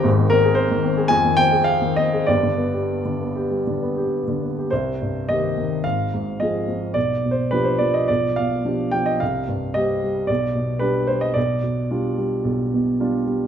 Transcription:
<<
  \new Staff \with { instrumentName = "Grand piano" } { \time 4/4 \key g \phrygian \tempo 4 = 108 r8 bes'8 c''4 aes''8 g''8 f''8 ees''8 | d''2.~ d''8 r8 | c''4 ees''4 f''4 ees''4 | \tuplet 3/2 { d''4 c''8 } b'16 c''16 d''16 ees''16 d''8 f''4 g''16 ees''16 |
f''4 ees''4 d''4 b'8 c''16 ees''16 | d''2~ d''8 r4. | }
  \new Staff \with { instrumentName = "Grand piano" } { \clef bass \time 4/4 \key g \phrygian <aes,, aes,>16 ees16 c'16 aes'8 ees16 c'16 aes'16 f,16 ees16 c'16 aes'8 ees16 c'16 aes'16 | <g,, g,>16 d16 b16 g'8 d16 b16 g'16 g16 d16 b16 g'8 d16 b16 g'16 | c,8 g,8 <ees c' g'>8 ees8 aes,,8 aes,8 <f c' aes'>8 f8 | b,,8 b,8 <f d' g'>8 f8 b,,8 b,8 <f d' g'>8 f8 |
c,8 g,8 <g c' g'>8 g8 b,,8 b,8 <g d' g'>8 g8 | b,,8 b,8 <g d' f'>8 g8 b,,8 b,8 <g d' f'>8 g8 | }
>>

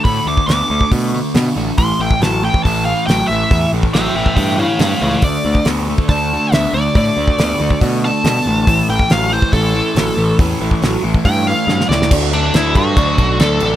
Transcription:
<<
  \new Staff \with { instrumentName = "Lead electric guitar" } { \time 4/4 \key d \major \tempo 4 = 139 b''8 d'''8 d'''4 r2 | c'''8 g''8 a''8 g''8 a''8 f''8 g''8 e''8~ | e''8 r8 <e'' g''>8 <e'' g''>8 <e'' g''>8 <cis'' f''>8 <cis'' f''>8 <cis'' f''>8 | d''4 r4 a''4 e''8 d''8 |
d''2 r8 a''4.~ | a''8 g''8 f''8 c''8 a'2 | r2 g''8 f''4 d''8 | r8 d'8 e'8 fis'4. a'4 | }
  \new Staff \with { instrumentName = "Steel-string acoustic guitar" } { \time 4/4 \key d \major r1 | r1 | r1 | <d a d' fis' a'>8 <d' fis' a'>8 <a d' fis' a'>8 <d' fis' a'>8 <d a d' fis' a'>4 <a d' fis' a'>4 |
<d a d' fis' a'>8 <d' fis' a'>8 <a d' fis' a'>4 <d a d' fis' a'>4 <a d' fis' a'>4 | <a, e a cis' e' a'>8 <a cis' e' a'>8 <a cis' e' a'>4 <a, e a cis' e' a'>4 <a cis' e' a'>4 | <a, e a cis' e' a'>8 <a cis' e' a'>8 <a cis' e' a'>4 <a, e a cis' e' a'>4 <a cis' e' a'>8 <a cis' e' a'>8 | <d a d' fis' a'>4 <a d' fis' a'>8 <d' fis' a'>8 <d a d' fis' a'>4 <a d' fis' a'>8 <d' fis' a'>8 | }
  \new Staff \with { instrumentName = "Overdriven electric guitar" } { \clef bass \time 4/4 \key d \major <d a>8 <d a>8 <d b>8 <d a>8 <d a>8 <d a>8 <d b>8 <d a>8 | <a, e>8 <a, e>8 <a, fis>8 <a, e>8 <a, e>8 <a, e>8 <a, fis>8 <a, e>8 | <a, e>8 <a, e>8 <a, fis>8 <a, e>8 <a, e>8 <a, e>8 <a, fis>8 <a, e>8 | <d a>8 <d a>8 <d b>8 <d a>8 <d a>8 <d a>8 <d b>8 <d a>8 |
<d a>8 <d a>8 <d b>8 <d a>8 <d a>8 <d a>8 <d b>8 <d a>8 | <a, e>8 <a, e>8 <a, fis>8 <a, e>8 <a, e>8 <a, e>8 <a, fis>8 <a, e>8 | <a, e>8 <a, e>8 <a, fis>8 <a, e>8 <a, e>8 <a, e>8 <a, fis>8 <a, e>8 | <d fis a d'>8 <d fis a d'>8 <d fis a d'>8 <d fis a d'>8 <d fis a d'>8 <d fis a d'>8 <d fis a d'>8 <d fis a d'>8 | }
  \new Staff \with { instrumentName = "Picked electric bass" } { \clef bass \time 4/4 \key d \major a,8 d,8 d,8 d,8 b,4 b,8 a,,8 | a,,8 a,,8 a,,4 a,,4 a,,8 a,,8 | e,8 a,,8 a,,8 a,,8 g,4 g,8 cis,8 | d,8 d,8 d,4 d,4 d,8 d,8 |
a,8 d,8 d,8 d,8 b,4 b,8 a,,8 | a,,8 a,,8 a,,4 a,,4 a,,8 a,,8 | e,8 a,,8 a,,8 a,,8 g,4 g,8 cis,8 | d,4 d,8 g,8 d,8 b,,8 d,8 a,,8 | }
  \new DrumStaff \with { instrumentName = "Drums" } \drummode { \time 4/4 <hho bd>8. bd16 <hho sn>8. bd16 <hho bd>4 <hho sn>4 | <hho bd>8. bd16 <hho sn>8. bd16 <hho bd>4 <hho sn>4 | <hho bd>8. bd16 <hho sn>8. bd16 <hho bd>4 <hho sn>4 | <hho bd>8. bd16 <hho sn>8. bd16 <hho bd>4 <hho sn>4 |
<hho bd>8. bd16 <hho sn>8. bd16 <hho bd>4 <hho sn>4 | <hho bd>8. bd16 <hho sn>8. bd16 <hho bd>4 <hho sn>4 | <hho bd>8. bd16 <hho sn>8. bd16 <hho bd>4 sn16 sn16 sn16 sn16 | <cymc bd>8 cymc8 <cymc sn>8 <cymc bd>8 <cymc bd>8 <cymc bd>8 <cymc sn>8 cymc8 | }
>>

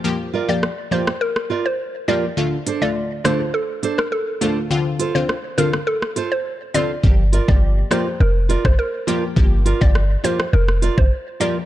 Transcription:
<<
  \new Staff \with { instrumentName = "Synth pluck" } { \time 4/4 \key g \minor \tempo 4 = 103 r8. d''8 r16 c''8 bes'16 r8 c''16 r8 d''16 r16 | r8. d''8 r16 c''8 a'16 r8 bes'16 a'8. r16 | r8. c''8 r16 bes'8 a'16 r8 c''16 r8 d''16 r16 | r8. d''8 r16 c''8 bes'16 r8 c''16 bes'8. r16 |
r8. d''8 r16 c''8 bes'16 r8 c''16 r8 d''16 r16 | }
  \new Staff \with { instrumentName = "Nylon-string guitar" } { \time 4/4 \key g \minor r8 <f' bes' d''>16 r8. <f' bes' d''>16 r8. <f' bes' d''>16 r8. <f' bes' d''>16 r16 | r8 <d' a' c''>16 r8. <d' a' c''>16 r8. <d' a' c''>16 r8. <d' a' c''>16 r16 | r8 <f' a' c''>16 r8. <f' a' c''>16 r8. <f' a' c''>16 r8. <f' a' c''>16 r16 | r8 <f' bes' d''>16 r8. <f' bes' d''>16 r8. <f' bes' d''>16 r8. <f' bes' d''>16 r16 |
r8 <f' bes' d''>16 r8. <f' bes' d''>16 r8. <f' bes' d''>16 r8. <f' bes' d''>16 r16 | }
  \new Staff \with { instrumentName = "Synth stab" } { \time 4/4 \key g \minor <f bes g'>8. <f bes g'>16 r8 <f bes g'>16 r4. r16 <f bes g'>16 r16 | <d a f'>16 r8 <d a f'>8. <d a f'>8 r4. <d a f'>8 | <d c' f'>8. <d c' f'>16 r8 <d c' f'>16 r4. r16 <d c' f'>16 r16 | <f bes g'>16 r8 <f bes g'>8. <f bes g'>8 r4. <f bes g'>8 |
<f bes g'>8. <f bes g'>16 r8 <f bes g'>16 r4. r16 <f bes g'>16 r16 | }
  \new Staff \with { instrumentName = "808-style bass" } { \clef bass \time 4/4 \key g \minor r1 | r1 | r1 | g,,8. g,,8. r8 f,,8. g,,16 r4 |
g,,8. g,,8. r8 f,,8. g,,16 r4 | }
  \new DrumStaff \with { instrumentName = "Drums" } \drummode { \time 4/4 r4 ss8. ss16 r16 ss8. r4 | r8 hh8 r8 <hh ss>8 r8 hh16 ss16 r8 hh8 | r8 hh8 ss8 hh16 ss16 r16 ss16 hh8 r8 hh8 | bd8 hh16 bd16 r8 <hh ss>8 r8 hh16 <bd ss>16 r8 hh8 |
bd8 hh16 bd16 ss8 hh16 ss16 r16 ss16 hh16 bd16 r8 hh8 | }
>>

